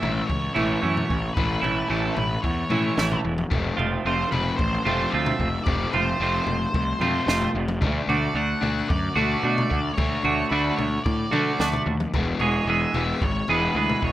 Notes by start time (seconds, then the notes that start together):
Already playing: C#4 E5
0.02 A1 A2 E3 A3, floor tom
0.27 C#2 A2 E3 C#5, kick
0.54 A1 A2 E3 A3 C#4 E4 C#5, floor tom
0.82 F#2 A2 E3 A3 C#4 E4
0.97 floor tom
1.10 A1 A2 E3, kick
1.34 A1 A2 E3 A3 B4, kick, floor tom
1.61 A1 A2 E3 A3 C#4 E4, floor tom
1.88 A1 A2 E3 A3 C#4 E4 A4
2.14 A1 A2 E3 B4, floor tom
2.42 E2 A2 E3 C#5, kick
2.69 A2 E3 A3 C#4 E4, floor tom, mid tom
2.97 A1 A2 E3 A3 C#4 E4, snare, mid tom
3.11 floor tom
3.25 E1 A2 E3
3.38 mid tom
3.50 F1 F3 A3 C4, kick, floor tom
3.77 F1 F3 A3 C4 F4, floor tom
4.05 F1 F3 A3 C4 F4 C5
4.31 F1 F3 A3 C4 B4, floor tom
4.56 A1 F3 A3 C5, kick
4.84 F1 F3 A3 C4 F4 C5, floor tom
5.10 D2 F3 A3 C4 E5
5.14 F4
5.26 floor tom
5.39 F1 F3 A3, kick
5.64 F1 F3 A3 C4 D5, kick, floor tom
5.91 F1 F3 A3 C4 F4 C5, floor tom
6.20 F1 F3 A3 C4 F4
6.46 F1 F3 A3, floor tom
6.74 C2 F3 A3, kick
7.00 F2 F3 A3 C4 F4, floor tom, mid tom
7.27 F1 F3 A3 C4 F4, snare, mid tom
7.42 floor tom
7.55 F1 F3 A3
7.68 mid tom
7.81 D2 D3 A3 D4, kick, floor tom
8.08 D2 D3 A3 D4 F#4 D5, floor tom
8.34 D2 D3 A3 D4 F#4 F#5
8.61 D2 D3 A3 D4, floor tom
8.88 F#2 D3 A3 D5, kick
9.14 D2 D3 A3 D4 F#4 D5, floor tom
9.43 B2 D3 A3 D4 F#4
9.58 floor tom
9.70 D2 D3 A3, kick
9.94 D3 C#5, floor tom
9.98 D2 A3 D4, kick
10.24 D2 D3 A3 D4 F#4, floor tom
10.49 D2 D3 A3 D4 F#4 B4
10.76 D2 D3 A3 C#5, floor tom
11.04 A2 D3 A3 D5, kick
11.31 D3 A3 D4 F#4, floor tom, mid tom
11.60 D2 D3 A3 D4 F#4, snare, mid tom
11.73 floor tom
11.86 D#2 D3 A3
12.00 mid tom
12.14 E1 E3 G#3 B3, kick, floor tom
12.39 E1 E3 G#3 B3 G#4 C#5, floor tom
12.65 E1 E3 G#3 B3 E5
12.70 G#4
12.94 E1 E3 G#3 B3, floor tom
13.21 G#1 E3 G#3 C#5, kick
13.48 E1 E3 G#3 B3 G#4 B4, floor tom
13.75 D2 E3 G#3 B3 G#4 B4
13.89 floor tom
14.02 E1 E3 G#3 C#5, kick